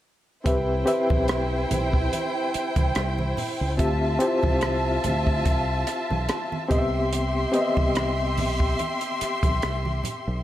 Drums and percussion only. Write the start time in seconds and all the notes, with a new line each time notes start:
0.46 kick, closed hi-hat, muted conga
0.87 closed hi-hat, muted conga
1.10 kick, high conga
1.28 cross-stick, closed hi-hat
1.71 closed hi-hat, high conga, low conga
1.93 kick
2.13 closed hi-hat, muted conga, high conga
2.54 closed hi-hat
2.76 kick, closed hi-hat, high conga
2.95 cross-stick, closed hi-hat, muted conga
3.19 high conga
3.37 open hi-hat, muted conga, low conga
3.79 kick, closed hi-hat
4.20 closed hi-hat, muted conga
4.43 kick, high conga
4.61 cross-stick, closed hi-hat, muted conga
5.04 closed hi-hat, high conga, low conga
5.27 kick
5.45 kick, closed hi-hat, muted conga, high conga
5.87 cross-stick, closed hi-hat
6.11 high conga
6.29 cross-stick, closed hi-hat, muted conga
6.52 high conga
6.71 kick, closed hi-hat, muted conga, low conga
7.13 closed hi-hat, muted conga
7.54 closed hi-hat
7.77 kick, high conga
7.95 cross-stick, closed hi-hat, muted conga
8.37 open hi-hat, high conga, low conga
8.60 kick
8.79 closed hi-hat, muted conga, high conga
9.01 closed hi-hat
9.21 cross-stick, closed hi-hat, muted conga
9.43 kick, closed hi-hat, high conga
9.62 cross-stick, closed hi-hat
9.85 high conga
10.04 closed hi-hat, low conga